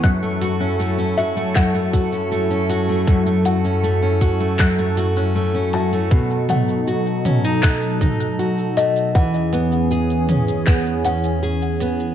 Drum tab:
HH |--o---o---o---o-|--o---o---o---o-|--o---o---o---o-|--o---o---o---o-|
SH |xxx-xxxxxxxxxxx-|xxxxx-xxxxxxxx-x|xxxxxxxxxxxxxxxx|xxxxxxxxxxxxxxxx|
CP |--------x-------|--------x-------|--------x-------|--------x-------|
T2 |----------------|----------------|--o---o---o-----|------o---------|
BD |o-------o-o-----|o-----o-o-------|o-------o-o-----|o-------o-------|